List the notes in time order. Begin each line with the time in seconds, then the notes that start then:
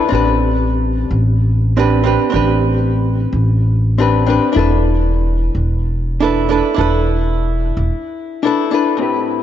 0.08 A1 C4 D4
0.13 G4 B4
1.11 A1
1.77 C4 D4 G4 B4
2.04 C4 D4 G4 B4
2.30 A1 C4 D4
2.34 G4 B4
3.33 A1
3.98 C4 D4 G4 B4
4.26 C4 D4 G4 B4
4.53 E1 D4 E4
4.57 A4 B4
5.55 E1
6.20 D4 E4 A4 B4
6.49 D4 E4 A4 B4
6.74 E1 D4 E4
6.78 A4 B4
7.77 E1
8.43 D4 E4 A4 B4
8.71 D4 E4 A4 B4
8.97 A2 C4 E4
9.02 G4 B4